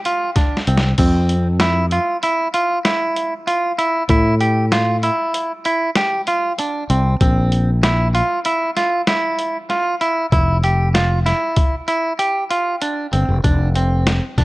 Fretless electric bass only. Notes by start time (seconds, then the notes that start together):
0.67 C2
0.98 F2
4.10 A2
6.90 C2
7.21 A#1
10.32 F1
13.13 G1
13.29 F1
13.44 F1
14.38 F1